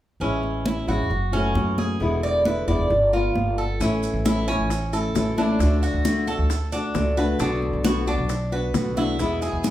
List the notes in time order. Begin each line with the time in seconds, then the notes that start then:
0.20 A1 E3 G#3 C#4 E4, high conga
0.43 high conga
0.65 E3 G#3 C#4 E4, high conga
0.87 A1 G#3 C#4 E4 F#4, high conga
0.99 E2
1.09 F#1, muted nylon-string guitar stroke, high conga
1.32 E3 A3 C#4 F#4, high conga
1.55 F#2 E3 A3 C#4 F#4, high conga
1.78 G#4, high conga
2.00 E1 B2 D3 G#3 B3 E4, high conga
2.23 D5, high conga
2.45 D3 G#3 B3 E4 B4, high conga
2.68 E1 D3 G#3 B3 E4 D5, high conga
2.79 E1
2.90 G1, muted nylon-string guitar stroke, high conga
3.13 B3 F4, high conga
3.35 G1 G3 B3 F4, high conga
3.58 A4
3.80 A1 E3 A3 C#4 E4, high bongo, high conga, maracas
4.03 high conga, maracas
4.14 A1
4.25 E3 A3 C#4 E4, high bongo, high conga, maracas
4.48 A3 C#4 E4, high conga, maracas
4.59 A1
4.70 muted nylon-string guitar stroke, high bongo, high conga, maracas
4.93 A3 C#4 E4 A4, high conga, maracas
5.15 A1 E3 A3 C#4 E4, high bongo, low bongo, high conga, maracas
5.37 A3 C#4 D4 E4, high conga, maracas
5.59 D2 D3 A3 D4 F#4, high bongo, high conga, maracas
5.83 F#4, high bongo, high conga, maracas
5.93 D2
6.05 D3 A3 D4 F#4, high bongo, high conga, maracas
6.27 A3 D4 F#4 A4, high bongo, high conga, maracas
6.38 D2
6.50 muted nylon-string guitar stroke, high bongo, high conga, maracas
6.72 A3 D4 F#4, high conga, maracas
6.94 C#2 D3 A3 D4 F#4, high bongo, low bongo, high conga, maracas
7.17 A3 D4 F#4 B4, high bongo, maracas
7.39 B1 B2 D3 B3 D4 F#4, high bongo, high conga, maracas
7.62 high conga
7.73 B1
7.84 B2 D3 B3 D4 F#4, high bongo, high conga, maracas
8.07 B3 D4 F#4, high conga, maracas
8.18 B1
8.29 muted nylon-string guitar stroke, high bongo, high conga, maracas
8.52 B3 D4 F#4 B4, high conga
8.74 B1 D3 B3 D4 F#4, high bongo, low bongo, high conga, maracas
8.97 D3 B3 D4 E4 F#4, high conga, maracas
9.19 E2 B2 E3 G#3 B3 E4, high bongo, high conga, maracas
9.42 G#4, high bongo, high conga, maracas
9.53 E2
9.64 B2 E3 G#3 B3 E4, high bongo, high conga, maracas